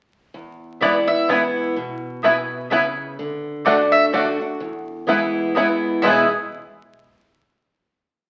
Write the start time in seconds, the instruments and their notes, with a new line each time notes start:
0.34 steel-string acoustic guitar E2
0.81 steel-string acoustic guitar E3 G#3 B3 E4, mandolin B3 E4 B4 D5 G#5, five-string banjo B3 E4
1.08 steel-string acoustic guitar B3 E4, mandolin E5
1.28 steel-string acoustic guitar E3 G#3 B3 E4, mandolin B3 E4 B4 G#5, five-string banjo B3 E4
1.76 steel-string acoustic guitar B2
2.23 steel-string acoustic guitar B2, mandolin B3 E4 B4 G#5, five-string banjo B3 E4
2.70 steel-string acoustic guitar C#3, mandolin B3 E4 B4 G#5, five-string banjo B3 E4
3.19 steel-string acoustic guitar D3
3.65 steel-string acoustic guitar D3 A3 D4 F#4, mandolin A3 F#4 D5 A5, five-string banjo A3 D4 F#4
3.92 mandolin E5
4.13 steel-string acoustic guitar D3 A3 D4 F#4, mandolin A3 F#4 D5 A5, five-string banjo A3 D4 F#4
4.39 steel-string acoustic guitar D4 F#4
4.60 steel-string acoustic guitar E2
5.07 steel-string acoustic guitar E3 G#3 B3 E4, mandolin B3 E4 B4 G#5, five-string banjo B3 E4
5.55 steel-string acoustic guitar E3 G#3 B3 E4, mandolin B3 E4 B4 G#5, five-string banjo B3 E4
6.02 steel-string acoustic guitar E2 B2 E3 G#3 B3 E4, five-string banjo G#3 B3, mandolin B3 E4 B4 E5 G#5
6.07 five-string banjo E4 G#4